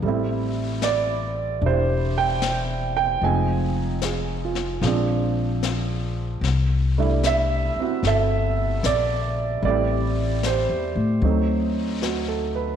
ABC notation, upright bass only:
X:1
M:4/4
L:1/8
Q:"Swing" 1/4=75
K:Ador
V:1 name="Upright bass" clef=bass
A,,,4 E,,,4 | =F,,,4 _B,,,4 | C,,3 z G,,,2 _B,,,2 | A,,,2- (3A,,, E,, A,, D,,4 |]